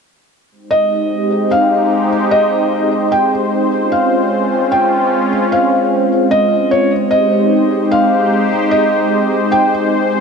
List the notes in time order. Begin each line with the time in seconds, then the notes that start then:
0.51 G#3 C4 D#4 G4 C5
0.71 D#5
1.51 F5
2.31 D#5
3.12 G5
3.71 G#3 C#4 F4
3.92 F5
4.72 G5
5.52 F5
6.31 D#5
6.71 C#5
6.91 D#4 G4 C5
7.11 D#5
7.91 F5
8.71 D#5
9.52 G5
10.12 C4 C#4 F4